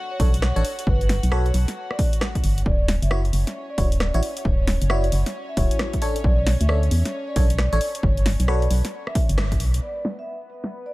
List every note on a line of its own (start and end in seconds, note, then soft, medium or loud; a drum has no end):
0.00 2.67 F#4 medium
0.00 2.67 F#5 medium
0.11 0.28 C#5 medium
0.20 0.52 B1 medium
0.20 0.30 D4 medium
0.20 0.30 A4 medium
0.20 0.30 C#5 medium
0.20 kick loud
0.20 open hi-hat loud
0.34 closed hi-hat medium
0.42 0.66 C#5 medium
0.42 cross-stick loud
0.42 snare medium
0.56 0.63 A1 medium
0.56 0.62 D4 medium
0.56 0.62 A4 medium
0.56 0.62 C#5 loud
0.56 closed hi-hat soft
0.65 open hi-hat loud
0.79 closed hi-hat medium
0.87 1.20 G1 loud
0.87 1.11 B4 medium
0.87 kick loud
1.01 closed hi-hat soft
1.09 snare medium
1.09 open hi-hat loud
1.23 1.52 B1 medium
1.23 closed hi-hat medium
1.32 1.47 F#4 loud
1.32 1.47 A4 medium
1.32 1.47 B4 medium
1.32 1.47 C#5 loud
1.32 1.51 C#5 medium
1.32 cross-stick loud
1.46 closed hi-hat soft
1.54 1.66 B1 medium
1.54 open hi-hat loud
1.68 snare soft
1.68 closed hi-hat medium
1.91 2.07 D5 medium
1.91 cross-stick medium
1.99 kick loud
1.99 open hi-hat loud
2.13 closed hi-hat medium
2.21 cross-stick loud
2.21 snare medium
2.35 kick medium
2.35 closed hi-hat soft
2.44 2.63 G1 medium
2.44 open hi-hat loud
2.58 closed hi-hat medium
2.66 2.99 D1 loud
2.66 9.84 C#4 medium
2.66 9.84 C#5 medium
2.66 2.85 D5 medium
2.66 kick loud
2.88 snare medium
2.88 open hi-hat loud
3.02 3.31 F#1 medium
3.02 3.19 E5 medium
3.02 closed hi-hat medium
3.11 3.21 E4 medium
3.11 3.21 F#4 medium
3.11 3.21 C#5 medium
3.11 cross-stick loud
3.25 closed hi-hat soft
3.33 3.45 F#1 medium
3.33 open hi-hat loud
3.47 snare soft
3.47 closed hi-hat medium
3.70 3.86 D5 medium
3.78 4.11 D1 medium
3.78 3.88 E4 medium
3.78 3.88 F#4 medium
3.78 3.88 C#5 medium
3.78 kick loud
3.78 open hi-hat loud
3.92 closed hi-hat medium
4.00 4.24 D5 medium
4.00 cross-stick loud
4.00 snare medium
4.14 4.21 A1 medium
4.14 4.20 E4 medium
4.14 4.20 F#4 medium
4.14 4.20 C#5 loud
4.14 closed hi-hat soft
4.23 open hi-hat loud
4.37 closed hi-hat medium
4.45 4.78 D1 loud
4.45 4.69 C#5 medium
4.45 kick loud
4.67 snare medium
4.67 open hi-hat loud
4.82 5.10 F#1 medium
4.82 closed hi-hat medium
4.90 5.05 E4 loud
4.90 5.05 F#4 medium
4.90 5.05 C#5 loud
4.90 5.09 D5 medium
4.90 cross-stick loud
5.04 closed hi-hat soft
5.12 5.24 F#1 medium
5.12 open hi-hat loud
5.26 snare soft
5.26 closed hi-hat medium
5.49 5.65 E5 loud
5.57 5.69 D1 medium
5.57 6.00 E4 medium
5.57 6.00 F#4 medium
5.57 6.00 C#5 medium
5.57 kick loud
5.57 open hi-hat loud
5.71 closed hi-hat medium
5.79 cross-stick loud
5.79 snare medium
5.93 kick medium
5.93 closed hi-hat medium
6.02 6.17 D4 medium
6.02 6.17 A4 medium
6.02 6.17 C#5 loud
6.02 open hi-hat loud
6.16 closed hi-hat medium
6.24 6.57 B1 loud
6.24 6.43 D5 loud
6.24 kick loud
6.47 snare medium
6.47 open hi-hat loud
6.61 6.89 D2 medium
6.61 6.77 E5 medium
6.61 closed hi-hat medium
6.69 6.79 D4 medium
6.69 6.79 A4 medium
6.69 6.79 C#5 medium
6.69 cross-stick loud
6.83 closed hi-hat soft
6.91 7.03 E2 medium
6.91 open hi-hat loud
7.05 snare soft
7.05 closed hi-hat medium
7.28 7.44 D5 medium
7.36 7.69 B1 medium
7.36 7.46 D4 medium
7.36 7.46 A4 medium
7.36 7.46 C#5 medium
7.36 kick loud
7.36 open hi-hat loud
7.50 closed hi-hat medium
7.59 7.82 D5 loud
7.59 cross-stick loud
7.59 snare medium
7.73 7.80 A1 medium
7.73 7.79 D4 loud
7.73 7.79 A4 medium
7.73 7.79 C#5 loud
7.73 closed hi-hat medium
7.81 open hi-hat loud
7.95 closed hi-hat medium
8.03 8.36 G1 loud
8.03 8.27 C#5 medium
8.03 kick loud
8.17 closed hi-hat soft
8.26 snare medium
8.26 open hi-hat loud
8.40 8.68 B1 medium
8.40 closed hi-hat medium
8.48 8.63 F#4 loud
8.48 8.63 A4 medium
8.48 8.63 B4 medium
8.48 8.63 C#5 loud
8.48 8.67 D5 medium
8.48 cross-stick loud
8.62 closed hi-hat soft
8.70 8.82 B1 medium
8.70 open hi-hat loud
8.85 snare soft
8.85 closed hi-hat medium
9.07 9.23 E5 medium
9.07 cross-stick medium
9.15 kick loud
9.15 open hi-hat loud
9.29 9.62 G1 medium
9.29 closed hi-hat medium
9.38 cross-stick loud
9.38 snare medium
9.52 kick medium
9.52 closed hi-hat medium
9.60 9.80 B1 loud
9.60 open hi-hat loud
9.74 closed hi-hat medium
9.82 10.94 B3 medium
9.82 10.94 B4 medium
9.82 10.01 D5 medium
9.97 closed hi-hat soft
10.05 snare medium
10.05 open hi-hat loud
10.19 10.35 E5 medium
10.19 closed hi-hat medium
10.27 shaker soft
10.41 closed hi-hat soft
10.50 open hi-hat medium
10.50 shaker medium
10.64 snare soft
10.64 closed hi-hat medium
10.64 shaker soft
10.72 shaker soft
10.86 10.94 D5 medium